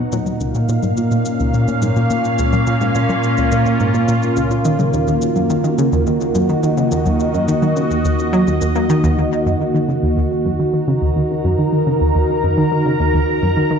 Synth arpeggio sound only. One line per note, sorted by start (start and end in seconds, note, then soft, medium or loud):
0.12 0.18 A#2 medium
0.41 0.54 C#2 medium
0.55 0.68 A#2 medium
0.69 0.79 A#2 medium
0.83 0.93 G#2 medium
0.97 1.07 A#2 medium
1.11 1.17 A#2 medium
1.40 1.53 C#2 medium
1.54 1.67 A#2 medium
1.68 1.78 A#2 medium
1.82 1.92 G#2 medium
1.96 2.06 A#2 medium
2.10 2.16 A#2 medium
2.39 2.52 C#2 medium
2.53 2.66 A#2 medium
2.67 2.77 A#2 medium
2.81 2.91 G#2 medium
2.95 3.05 A#2 medium
3.09 3.15 A#2 medium
3.38 3.51 C#2 medium
3.52 3.65 A#2 medium
3.66 3.76 A#2 medium
3.80 3.90 G#2 medium
3.94 4.04 A#2 medium
4.08 4.14 A#2 medium
4.37 4.50 C#2 medium
4.51 4.64 A#2 medium
4.65 4.75 D#3 medium
4.79 4.89 C#3 medium
4.93 5.03 D#2 medium
5.08 5.13 D#2 medium
5.36 5.49 F#2 medium
5.50 5.63 D#3 medium
5.64 5.74 D#3 medium
5.78 5.88 C#3 medium
5.92 6.02 D#2 medium
6.07 6.12 D#2 medium
6.35 6.48 F#2 medium
6.49 6.62 D#3 medium
6.63 6.73 D#3 medium
6.77 6.87 C#3 medium
6.92 7.01 D#2 medium
7.06 7.12 D#2 medium
7.34 7.47 F#2 medium
7.48 7.61 D#3 medium
7.62 7.72 D#3 medium
7.76 7.86 C#3 medium
7.91 8.00 D#2 medium
8.05 8.11 D#2 medium
8.33 8.43 F#3 loud
8.47 8.57 D#2 medium
8.61 8.71 D#2 medium
8.76 8.85 A#3 medium
8.90 9.03 D#3 loud
9.04 9.10 D#2 medium
9.18 9.24 D#2 medium
9.46 9.60 F#2 medium
9.60 9.73 D#3 medium
9.74 9.84 D#3 medium
9.89 9.98 C#3 medium
10.03 10.13 D#2 medium
10.17 10.23 D#2 medium
10.45 10.59 F#2 medium
10.59 10.72 D#3 medium
10.73 10.83 D#3 medium
10.88 10.98 C#3 medium
11.02 11.12 D#2 medium
11.16 11.22 D#2 medium
11.44 11.58 F#2 medium
11.58 11.71 D#3 medium
11.73 11.82 D#3 medium
11.87 11.97 C#3 medium
12.01 12.11 D#2 medium
12.15 12.21 D#2 medium
12.43 12.57 F#2 medium
12.58 12.71 D#3 medium
12.72 12.82 D#3 medium
12.86 12.96 C#3 medium
13.00 13.10 D#2 medium
13.14 13.20 D#2 medium
13.42 13.56 F#2 medium
13.57 13.70 D#3 medium
13.71 13.79 D#3 medium